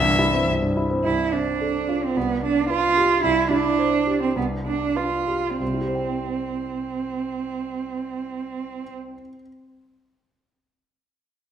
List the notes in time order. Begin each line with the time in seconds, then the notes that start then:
Already playing: C2 E3 E5
0.04 G2
0.19 E4
0.33 C4
0.48 C2
0.62 G2
0.77 E4
0.91 C4
1.04 C2 E4
1.33 C4 D4
1.61 A4
1.89 F4
2.04 C4
2.17 C2 B3
2.43 D4
2.70 F4 B4
2.97 G4
3.24 C2 E4
3.51 D4 E4
3.79 C5
4.07 G4
4.22 C4
4.36 C2 B3
4.66 D4
4.96 F4 B4
5.28 G4
5.60 C2 C4
5.67 C3
5.74 E4
5.81 G4
5.88 C5
5.95 G5